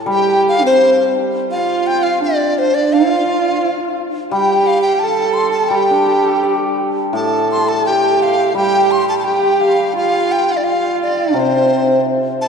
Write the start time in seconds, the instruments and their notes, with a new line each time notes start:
Already playing: hammered dulcimer A2
0.06 hammered dulcimer G3, horsehead fiddle G4
0.11 dizi G5
0.49 dizi F5
0.62 horsehead fiddle C4
0.66 dizi C5
1.51 horsehead fiddle F4, dizi F5
1.87 dizi G5
2.03 dizi F5
2.21 horsehead fiddle D4, dizi D5
2.58 dizi C5
2.74 dizi D5
2.93 horsehead fiddle F4, dizi F5
4.31 hammered dulcimer G3, horsehead fiddle G4, dizi G5
4.67 dizi F5
4.82 dizi G5
4.99 dizi A5
5.04 horsehead fiddle A4
5.33 dizi C6
5.52 dizi A5
5.69 hammered dulcimer G3, dizi G5
5.75 horsehead fiddle G4
5.91 hammered dulcimer D4
6.06 hammered dulcimer G4
6.25 hammered dulcimer A4
6.43 hammered dulcimer D5
7.13 hammered dulcimer A2, horsehead fiddle A4, dizi A5
7.51 dizi C6
7.69 dizi A5
7.86 horsehead fiddle G4, dizi G5
8.22 dizi F5
8.54 hammered dulcimer G3, horsehead fiddle G4, dizi G5
8.91 dizi C6
9.09 dizi A5
9.19 dizi A5
9.24 horsehead fiddle G4, dizi G5
9.61 dizi F5
9.96 horsehead fiddle F4, dizi F5
10.32 dizi G5
10.52 dizi F5
10.57 dizi D5
10.61 horsehead fiddle F4, dizi F5
11.02 dizi D5
11.34 hammered dulcimer C3, horsehead fiddle C4
11.40 dizi C5
12.41 dizi A5